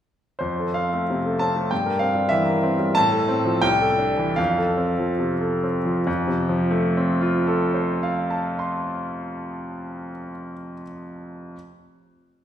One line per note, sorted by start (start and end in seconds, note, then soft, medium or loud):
0.39 1.67 F2 soft
0.39 0.75 C5 medium
0.59 0.87 A4 soft
0.74 1.03 C4 soft
0.74 1.39 F5 medium
0.93 1.19 A3 soft
1.10 1.35 C3 soft
1.26 1.50 A4 soft
1.39 1.65 C4 soft
1.39 1.71 A5 medium
1.56 1.71 A3 soft
1.71 2.95 G2 soft
1.71 2.01 G5 medium
1.86 2.11 A#4 soft
1.99 2.26 C4 soft
1.99 2.31 F5 medium
2.15 2.41 G3 soft
2.29 2.57 E3 soft
2.29 2.96 E5 medium
2.45 2.73 A#4 soft
2.63 2.91 C4 soft
2.79 2.97 G3 medium
2.95 3.61 A2 medium
2.95 3.62 A5 loud
3.12 3.39 A4 soft
3.28 3.56 C4 medium
3.45 3.63 F3 soft
3.62 4.35 C2 medium
3.62 4.37 G5 medium
3.80 4.10 A4 soft
3.99 4.30 D4 medium
4.17 4.38 E3 soft
4.36 6.03 F2 medium
4.36 5.63 F5 medium
4.58 4.91 A4 soft
4.77 5.11 C4 soft
4.99 5.33 F3 soft
5.19 5.54 C3 soft
5.41 5.77 A4 soft
5.63 5.98 C4 soft
5.85 6.07 F3 soft
6.07 10.10 F2 medium
6.27 10.30 C3 medium
6.49 10.52 F3 medium
6.71 10.74 A3 medium
6.97 10.82 C4 medium
7.21 10.82 F4 medium
7.47 10.82 A4 medium
7.74 10.82 C5 soft
8.03 10.82 F5 medium
8.31 10.82 A5 soft
8.59 10.82 C6 soft